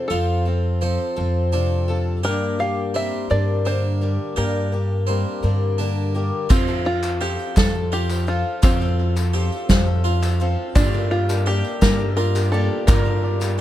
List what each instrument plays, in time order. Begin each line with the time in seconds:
Already playing: steel-string acoustic guitar F2 C4
0.08 upright bass F2, twelve-string acoustic guitar F3 C4 F4 A4, harpsichord F4, five-string banjo A4
0.12 steel-string acoustic guitar F2
0.45 twelve-string acoustic guitar C4 F4 A4
0.81 twelve-string acoustic guitar F3 C4 F4 A4, harpsichord C4
1.16 upright bass F2, twelve-string acoustic guitar F3 C4 F4 A4
1.52 steel-string acoustic guitar C3, twelve-string acoustic guitar F3 C4 F4 A4, harpsichord D4
1.88 twelve-string acoustic guitar C4 F4 A4
2.23 twelve-string acoustic guitar G2 D3 G3 A#3 D4 A#4, upright bass G2, harpsichord G4, five-string banjo A#4
2.29 steel-string acoustic guitar G4
2.59 twelve-string acoustic guitar G3 A#3 D4 A#4, steel-string acoustic guitar G4, five-string banjo F5
2.94 twelve-string acoustic guitar G3 A#3 D4 A#4, harpsichord C4, five-string banjo E5
3.30 twelve-string acoustic guitar G2 D3 G3 A#3 D4 A#4, upright bass G2, five-string banjo D5
3.65 steel-string acoustic guitar D3, twelve-string acoustic guitar G3 A#3 D4 A#4, harpsichord D4, five-string banjo C5
4.01 twelve-string acoustic guitar G3 A#3 D4 A#4, steel-string acoustic guitar G4
4.36 twelve-string acoustic guitar G2 D3 G3 A#3 D4 A#4, upright bass G2, harpsichord G4, five-string banjo A#4
4.72 twelve-string acoustic guitar G3 A#3 D4 A#4, steel-string acoustic guitar G4
5.07 twelve-string acoustic guitar G3 A#3 D4 A#4, harpsichord C4
5.43 upright bass G2, twelve-string acoustic guitar G2 D3 G3 A#3 D4 A#4
5.78 steel-string acoustic guitar D3, twelve-string acoustic guitar G3 A#3 D4 A#4, harpsichord D4
6.14 twelve-string acoustic guitar G3 A#3 D4 A#4, steel-string acoustic guitar G4
6.49 upright bass F2, twelve-string acoustic guitar F3 C4 F4 A4, five-string banjo C4, harpsichord F4, kick, clap, crash, tambourine
6.68 twelve-string acoustic guitar C4 F4 A4, clap, tambourine
6.85 five-string banjo F4, clap, ride
7.03 twelve-string acoustic guitar C4 F4 A4, clap, tambourine
7.21 twelve-string acoustic guitar F3 C4 F4 A4, harpsichord G4, five-string banjo G4, clap, ride, tambourine
7.39 tambourine
7.56 upright bass F2, twelve-string acoustic guitar F3 C4 F4 A4, five-string banjo A4, kick, snare, clap, ride, tambourine
7.74 twelve-string acoustic guitar C4 F4 A4
7.92 harpsichord F4, five-string banjo G4, ride, tambourine
8.09 twelve-string acoustic guitar C4 F4 A4, clap, tambourine
8.27 twelve-string acoustic guitar F3 C4 F4 A4, five-string banjo F4, ride
8.62 upright bass F2, twelve-string acoustic guitar F3 C4 F4 A4, five-string banjo C4, harpsichord F4, kick, clap, ride, tambourine
8.80 twelve-string acoustic guitar C4 F4 A4, clap, tambourine
8.99 clap, ride
9.16 twelve-string acoustic guitar C4 F4 A4, clap, tambourine
9.33 twelve-string acoustic guitar F3 C4 F4 A4, harpsichord G4, clap, ride, tambourine
9.52 tambourine
9.69 upright bass F2, twelve-string acoustic guitar F3 C4 F4 A4, kick, snare, clap, ride, tambourine
9.86 twelve-string acoustic guitar C4 F4 A4
10.04 harpsichord F4, ride, tambourine
10.22 twelve-string acoustic guitar C4 F4 A4, clap, tambourine
10.40 twelve-string acoustic guitar F3 C4 F4 A4, ride
10.75 upright piano G1 G2 A#3 D4 G4 D5, twelve-string acoustic guitar G2 D3 G3 A#3 D4 G4, upright bass G2, five-string banjo D4, harpsichord F4, kick, clap, ride, tambourine
10.93 twelve-string acoustic guitar G3 A#3 D4 G4, clap, tambourine
11.10 upright piano A#3 D4 G4 D5, five-string banjo F4, clap, ride
11.29 twelve-string acoustic guitar G3 A#3 D4 G4, clap, tambourine
11.46 twelve-string acoustic guitar G3 A#3 D4 G4, upright piano A#3 D4 G4 F5, harpsichord G4, five-string banjo G4, clap, ride
11.64 tambourine
11.81 twelve-string acoustic guitar G2 D3 G3 A#3 D4 G4, upright bass G2, upright piano A#3 D4 G4 D5, five-string banjo A#4, kick, snare, clap, ride, tambourine
11.99 twelve-string acoustic guitar G3 A#3 D4 G4
12.17 upright piano A#3 D4 G4 D5, harpsichord F4, five-string banjo A#4, ride, tambourine
12.35 twelve-string acoustic guitar G3 A#3 D4 G4, clap, tambourine
12.52 twelve-string acoustic guitar G3 A#3 D4 G4, upright piano A#3 D4 G4 D5, five-string banjo A4, ride
12.87 upright piano G1 G2 A#3 D4 G4 D5, twelve-string acoustic guitar G2 D3 G3 A#3 D4 G4, upright bass G2, harpsichord F4, five-string banjo A#4, kick, clap, ride, tambourine
13.05 twelve-string acoustic guitar G3 A#3 D4 G4
13.23 upright piano A#3 D4 G4 D5, ride
13.40 twelve-string acoustic guitar G3 A#3 D4 G4, clap, tambourine
13.58 twelve-string acoustic guitar G3